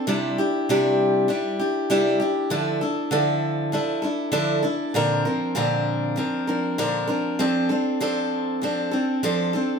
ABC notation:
X:1
M:4/4
L:1/8
Q:1/4=98
K:F
V:1 name="Steel-string acoustic guitar"
[C,G,DEG] [DEG] [C,G,DEG]2 [G,DEG] [DEG] [C,G,DEG] [DEG] | [D,F,DEA] [DEA] [D,F,DEA]2 [F,DEA] [DEA] [D,F,DEA] [DEA] | [B,,D,F,CDB] [F,CDB] [B,,D,F,CDB]2 [F,CDB] [F,CDB] [B,,D,F,CDB] [F,CDB] | [F,CDA] [CDA] [F,CDA]2 [F,CDA] [CDA] [F,CDA] [CDA] |]